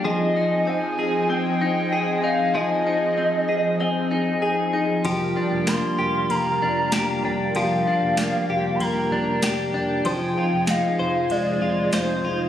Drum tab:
RD |--------|--------|x-x-x-x-|x-x-x-x-|
TB |--------|--------|--x---x-|--x---x-|
SD |--------|--------|--o---o-|--o---o-|
BD |--------|--------|o---o--o|o---oo--|

RD |x-x-x-x-|
TB |--x---x-|
SD |--o---o-|
BD |o---o--o|